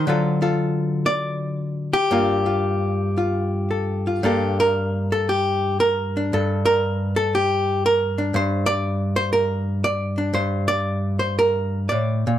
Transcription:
0.00 1.06 C5 medium
0.07 2.10 D3 medium
0.07 2.10 F#3 soft
0.07 0.41 F4 soft
0.07 0.42 A4 soft
0.42 2.12 F4 soft
0.42 2.14 A4 soft
1.06 1.93 D5 medium
1.93 4.24 G4 medium
2.11 4.22 G2 medium
2.11 4.22 A#3 soft
2.11 2.45 F4 soft
2.46 3.16 F4 soft
3.18 4.06 F4 soft
3.71 4.22 A4 soft
4.07 4.22 F4 soft
4.23 6.33 G2 medium
4.23 6.36 A#3 soft
4.23 6.16 D4 soft
4.23 4.59 G4 soft
4.23 4.60 A4 medium
4.60 5.12 A#4 medium
5.12 5.29 A4 medium
5.29 5.80 G4 medium
5.80 6.64 A#4 medium
6.17 8.18 D4 soft
6.33 8.34 G2 medium
6.33 6.67 A4 medium
6.65 7.17 A#4 loud
7.16 7.33 A4 medium
7.35 7.84 G4 medium
7.86 8.35 A#4 medium
8.18 8.39 D4 soft
8.34 10.32 G2 medium
8.34 8.66 C5 medium
8.66 9.16 D5 loud
9.16 9.32 C5 medium
9.33 9.83 A#4 medium
9.84 10.34 D5 medium
10.18 10.37 D4 soft
10.33 11.90 G2 medium
10.33 10.67 C5 medium
10.68 11.19 D5 loud
11.19 11.37 C5 medium
11.39 11.89 A#4 medium
11.89 12.26 A2 soft
11.89 12.39 D5 medium
12.27 12.39 A#2 medium

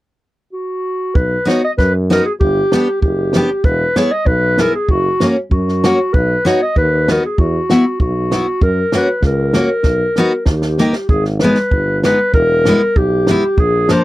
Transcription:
0.53 1.17 F#4 medium
1.15 1.36 B1 medium
1.15 1.50 B4 medium
1.15 kick medium
1.45 1.61 B3 medium
1.45 1.61 D#4 medium
1.45 1.61 F#4 medium
1.45 1.64 C#5 medium
1.45 snare medium
1.65 1.71 D#5 medium
1.78 2.19 F#2 medium
1.78 1.93 B4 medium
1.78 kick medium
1.78 snare soft
2.10 2.24 B3 medium
2.10 2.24 D#4 medium
2.10 2.25 F#4 medium
2.10 2.25 A#4 medium
2.10 snare medium
2.26 2.33 G#4 medium
2.40 2.61 G1 medium
2.40 2.99 G4 loud
2.40 kick medium
2.72 2.87 B3 medium
2.72 2.87 D4 medium
2.72 2.87 G4 medium
2.72 snare medium
3.02 3.43 F#1 medium
3.02 3.66 G4 medium
3.02 kick medium
3.33 3.49 B3 medium
3.33 3.49 D4 medium
3.33 3.49 G4 medium
3.33 snare medium
3.64 3.86 E1 medium
3.64 3.99 B4 medium
3.64 kick medium
3.96 4.10 B3 medium
3.96 4.11 E4 medium
3.96 4.11 G#4 medium
3.96 4.13 C#5 medium
3.96 snare medium
4.12 4.28 D#5 medium
4.26 4.67 B1 medium
4.26 4.62 B4 medium
4.26 kick medium
4.58 4.72 B3 medium
4.58 4.73 E4 medium
4.58 4.73 G#4 soft
4.58 4.74 A#4 loud
4.58 snare medium
4.75 4.92 G#4 medium
4.88 5.09 F#1 medium
4.88 5.26 F#4 loud
4.88 kick medium
5.20 5.35 A#3 medium
5.20 5.36 C#4 medium
5.20 5.36 F#4 medium
5.20 snare medium
5.51 5.92 F#2 medium
5.51 6.15 F#4 medium
5.51 kick medium
5.68 snare soft
5.84 5.98 A#3 medium
5.84 5.98 C#4 medium
5.84 5.98 F#4 medium
5.84 snare medium
6.14 6.35 B1 medium
6.14 6.48 B4 medium
6.14 kick medium
6.45 6.59 B3 medium
6.45 6.60 D#4 medium
6.45 6.60 F#4 medium
6.45 6.62 C#5 medium
6.45 snare medium
6.62 6.76 D#5 medium
6.76 7.17 D#2 medium
6.76 7.07 B4 medium
6.76 kick medium
7.08 7.22 B3 medium
7.08 7.22 D#4 soft
7.08 7.23 F#4 medium
7.08 7.24 A#4 medium
7.08 snare medium
7.26 7.41 G#4 medium
7.38 7.59 E2 medium
7.38 8.01 F#4 medium
7.38 kick medium
7.70 7.84 B3 medium
7.70 7.84 E4 medium
7.70 7.84 F#4 medium
7.70 snare medium
8.00 8.40 B1 medium
8.00 8.64 F#4 medium
8.00 kick medium
8.31 8.45 B3 soft
8.31 8.46 E4 soft
8.31 8.46 F#4 medium
8.31 snare medium
8.61 8.82 F#2 medium
8.61 8.94 A#4 loud
8.61 kick medium
8.92 9.07 A#3 medium
8.92 9.07 C#4 medium
8.92 9.08 F#4 medium
8.92 snare medium
8.97 9.23 B4 medium
9.22 9.63 C#2 medium
9.22 10.45 A#4 medium
9.22 kick medium
9.22 snare soft
9.53 9.68 A#3 medium
9.53 9.69 C#4 soft
9.53 9.69 F#4 medium
9.53 snare medium
9.83 10.05 B1 medium
9.83 kick medium
9.83 snare soft
10.16 10.31 B3 medium
10.16 10.31 D#4 medium
10.16 10.32 F#4 medium
10.16 snare soft
10.46 10.88 D#2 medium
10.46 11.06 G4 medium
10.46 kick medium
10.46 snare medium
10.62 snare soft
10.78 10.93 A#3 medium
10.78 10.94 D#4 medium
10.78 10.94 G4 medium
10.78 snare soft
10.93 snare soft
11.09 11.50 G#1 medium
11.09 11.24 G#4 medium
11.09 kick medium
11.25 snare soft
11.40 11.57 G#3 medium
11.40 12.00 B4 medium
11.40 snare medium
11.44 11.57 B3 medium
11.44 11.57 D#4 medium
11.55 snare soft
11.71 12.13 G1 medium
11.71 kick medium
12.03 12.18 G#3 medium
12.03 12.18 B3 medium
12.03 12.18 D#4 medium
12.03 12.33 B4 medium
12.03 snare medium
12.33 12.74 E1 medium
12.33 12.99 A#4 loud
12.33 kick medium
12.65 12.80 G#3 medium
12.65 12.81 B3 medium
12.65 12.81 E4 medium
12.65 snare medium
12.96 13.36 B1 medium
12.96 13.61 G4 medium
12.96 kick medium
13.27 13.42 G#3 medium
13.27 13.43 B3 soft
13.27 13.43 E4 medium
13.27 snare medium
13.57 13.98 A#1 medium
13.57 13.93 G#4 medium
13.57 kick medium
13.89 14.03 F3 medium
13.89 14.04 A#3 medium
13.89 14.04 D4 medium
13.89 14.04 C5 loud
13.89 snare medium

